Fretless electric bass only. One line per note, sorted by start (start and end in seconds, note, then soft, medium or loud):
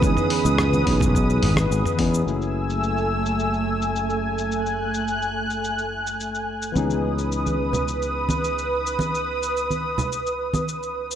0.03 0.14 C#2 loud
0.45 0.82 C#2 medium
0.87 1.39 B1 loud
1.44 1.70 G#1 loud
1.71 1.82 G#1 medium
1.99 2.22 E2 medium
2.27 6.72 F#1 medium
6.76 11.15 C#2 medium